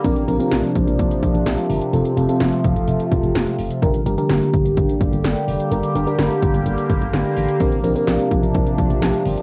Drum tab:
HH |xxxxxxxxxxxxxxox|xxxxxxxxxxxxxxox|xxxxxxxxxxxxxxox|xxxxxxxxxxxxxxox|
SD |----o-------o---|----o-------o---|----o-------o---|----o-------o---|
BD |o-----o-o-o-----|------o---o-----|o-----o-o-o-----|------o---o-----|

HH |xxxxxxxxxxxxxxox|
SD |----o-------o---|
BD |o-----o-o-o-----|